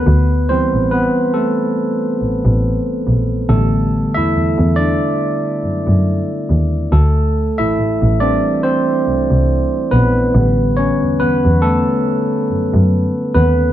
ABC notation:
X:1
M:4/4
L:1/16
Q:"Swing 16ths" 1/4=70
K:Am
V:1 name="Tine electric piano"
[B,B]2 [Cc]2 [B,B]2 [A,A]8 z2 | [A,A]3 [Ee]3 [Dd]6 z4 | [A,A]3 [Ee]3 [Dd]2 [Cc]6 [B,B]2- | [B,B]2 [^C^c]2 [B,B]2 [A,A]8 [B,B]2 |]
V:2 name="Tine electric piano" clef=bass
z2 [E,G,]6 z8 | [D,G,B,]16 | z6 [E,G,C]8- [E,G,C]2 | [D,G,B,]2 z12 z2 |]
V:3 name="Double bass" clef=bass
D,,3 A,,, z6 A,,, A,,, z2 _B,,,2 | A,,,3 E,, E,, E,,2 z3 ^F,, F,, z2 _E,,2 | D,,3 A,,, A,,, A,,,2 z3 C,, C,, z2 _B,,,2 | A,,,3 E,, E,, E,,2 z3 ^F,, F,, z2 _E,,2 |]